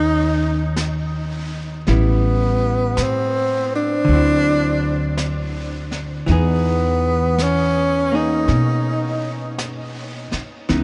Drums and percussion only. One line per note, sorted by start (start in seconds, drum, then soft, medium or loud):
0.76 brush sweep soft
0.76 snare soft
0.76 hi-hat pedal medium
1.87 brush sweep soft
1.87 snare soft
2.97 brush sweep soft
2.97 snare medium
2.97 hi-hat pedal medium
4.07 brush sweep soft
5.18 brush sweep soft
5.18 snare medium
5.18 hi-hat pedal soft
5.91 snare soft
6.27 brush sweep soft
6.27 snare soft
7.38 brush sweep soft
7.38 snare soft
7.38 hi-hat pedal medium
8.48 brush sweep soft
8.48 snare soft
9.58 brush sweep soft
9.58 snare soft
9.58 hi-hat pedal medium
10.32 snare soft
10.69 brush sweep soft
10.69 snare soft